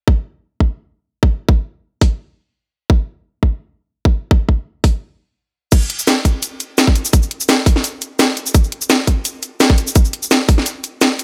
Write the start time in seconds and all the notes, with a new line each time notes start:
0.08 kick
0.60 kick
1.23 kick
1.49 kick
2.01 kick, open hi-hat
2.90 kick
3.43 kick
4.05 kick
4.31 kick
4.49 kick
4.84 kick, open hi-hat
5.72 kick, closed hi-hat, crash, cabasa
5.82 cabasa
5.90 closed hi-hat
5.99 cabasa
6.07 snare, closed hi-hat, cabasa
6.25 kick, closed hi-hat, cabasa
6.43 closed hi-hat, cabasa
6.60 closed hi-hat, cabasa
6.78 snare, closed hi-hat, cabasa
6.87 kick
6.96 closed hi-hat, cabasa
7.05 cabasa
7.13 kick, closed hi-hat, cabasa
7.23 cabasa
7.31 closed hi-hat
7.41 cabasa
7.49 snare, closed hi-hat, cabasa
7.66 kick, open hi-hat, cabasa
7.76 snare
7.84 closed hi-hat, cabasa
8.02 closed hi-hat, cabasa
8.19 snare, closed hi-hat, cabasa
8.37 closed hi-hat, cabasa
8.46 cabasa
8.55 kick, closed hi-hat, cabasa
8.64 cabasa
8.72 closed hi-hat
8.82 cabasa
8.90 snare, closed hi-hat, cabasa
9.07 kick, closed hi-hat, cabasa
9.25 closed hi-hat, cabasa
9.43 closed hi-hat, cabasa
9.60 snare, closed hi-hat, cabasa
9.70 kick
9.78 closed hi-hat, cabasa
9.87 cabasa
9.95 kick, closed hi-hat, cabasa
10.05 cabasa
10.13 closed hi-hat
10.23 cabasa
10.31 snare, closed hi-hat, cabasa
10.49 kick, open hi-hat, cabasa
10.58 snare
10.66 closed hi-hat, cabasa
10.84 closed hi-hat, cabasa
11.01 snare, closed hi-hat, cabasa
11.19 closed hi-hat, cabasa